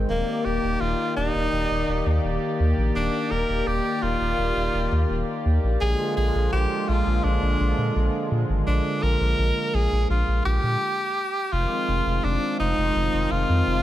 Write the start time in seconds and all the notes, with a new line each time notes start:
Already playing: D#3
0.09 D#1 A#3 G4 D5
0.45 D#1 G4
0.63 D#1
0.81 D#1 F4
1.17 D#1 D#4
1.35 D#1
1.53 D#1
1.70 D#1
1.88 D#1
2.06 D#2
2.24 D#1
2.60 D#2
2.77 A#1
2.95 D#1 D4
3.31 D#1 A#4
3.49 D#1
3.67 D#1 G4
4.02 D#1 F4
4.20 D#1
4.38 D#1
4.56 D#1
4.74 D#1
4.92 D#2
5.10 D#1
5.45 D#2
5.63 A#1
5.81 A#1 D3 F3 G#3 F4 G#4
6.17 A#1 G#4
6.35 A#1
6.52 A#1 G4
6.88 A#1 F4
7.06 A#1
7.24 A#1 D4
7.42 A#1
7.60 A#1
7.78 A#2
7.96 A#1
8.31 A#2
8.49 G#1
8.67 A#1 D4
9.03 A#1 A#4
9.20 A#1
9.38 A#1
9.74 A#1 G#4
9.92 A#1
10.10 A#1 F4
10.28 A#1
10.45 A#1 G4
10.63 A#2
11.52 F1 D#3 F3 G#3 C4 F4
11.88 F1
12.06 F1
12.24 F1 D4
12.60 F1 D#4
12.77 F1
12.95 F1
13.13 F1
13.31 F1 F4
13.49 F2
13.67 F1